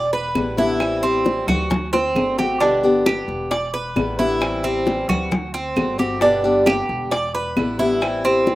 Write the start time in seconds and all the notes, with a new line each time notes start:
Already playing: E1 D5
0.13 B4, high bongo, high conga
0.35 A1 D3 G3 B3 E4, high bongo, low bongo, high conga, claves
0.57 D3 G3 B3 E4, high bongo, high conga
0.80 E3 G3 C4 E4, high bongo, high conga, claves
1.02 G3 C4 E4, high conga
1.25 E3 G3 E4, high bongo, high conga
1.47 D2 F#4, high bongo, high conga, low conga, claves
1.70 muted steel-string acoustic guitar stroke, high bongo, high conga, low conga
1.93 C4, high bongo, high conga
2.15 G1 D3 A3 C4 F#4, low bongo, high conga, claves
2.38 A3 C4 F#4 G4, low bongo, high conga
2.60 B2 D3 G3 B3 D4 G4, high bongo, high conga
2.83 D3 G3 B3 G4, high conga
3.06 D3 G3 B3 G4, high bongo, high conga, claves
3.28 E1, high bongo
3.51 D5, muted steel-string acoustic guitar stroke, high bongo, high conga
3.74 B4, high bongo, high conga
3.96 A1 D3 G3 B3 E4, high bongo, low bongo, high conga, claves
4.19 D3 G3 B3 E4, high bongo, high conga
4.41 E3 G3 C4 E4, high bongo, high conga, claves
4.63 G3 C4 E4, high conga
4.86 E3 G3 C4 E4, high bongo, high conga
5.09 D2 F#4, high bongo, high conga, low conga, claves
5.31 muted steel-string acoustic guitar stroke, high bongo, high conga, low conga
5.54 C4, high bongo, high conga
5.76 G1 D3 A3 C4 F#4, high bongo, low bongo, high conga, claves
5.98 A3 C4 F#4 G4, high bongo, high conga
6.21 B2 D3 G3 B3 D4 G4, high bongo, high conga
6.44 D3 G3 B3 G4, high conga
6.66 D3 G3 B3 G4, high bongo, high conga, claves
6.89 E1, high bongo
7.11 D5, muted steel-string acoustic guitar stroke, high bongo, high conga
7.35 B4, high bongo, high conga
7.57 A1 D3 G3 B3 E4, high bongo, low bongo, high conga, claves
7.79 D3 G3 B3 E4, high bongo, high conga
8.01 E3 G3 C4 E4, high bongo, high conga, claves
8.24 G3 C4 E4, high conga
8.46 E3 G3 C4 E4, high bongo, high conga